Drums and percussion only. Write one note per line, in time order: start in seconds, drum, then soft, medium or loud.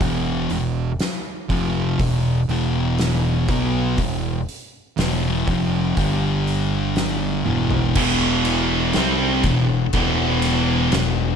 0.01 kick loud
0.01 open hi-hat medium
0.50 open hi-hat medium
0.99 snare medium
0.99 open hi-hat medium
1.50 kick medium
1.50 open hi-hat soft
1.99 kick loud
1.99 open hi-hat medium
2.49 open hi-hat soft
2.98 snare loud
2.98 open hi-hat medium
3.48 kick loud
3.48 open hi-hat medium
3.98 kick medium
3.98 open hi-hat medium
4.49 open hi-hat medium
4.98 snare loud
4.98 open hi-hat medium
5.48 kick loud
5.48 open hi-hat medium
5.97 kick loud
5.97 open hi-hat medium
6.47 open hi-hat medium
6.96 snare loud
6.96 open hi-hat medium
7.46 high tom medium
7.71 floor tom medium
7.95 kick loud
7.95 crash loud
8.45 ride medium
8.93 snare loud
8.93 ride loud
9.43 kick medium
9.43 ride medium
9.93 kick loud
9.93 ride loud
10.42 snare soft
10.42 ride medium
10.92 snare loud
10.92 ride loud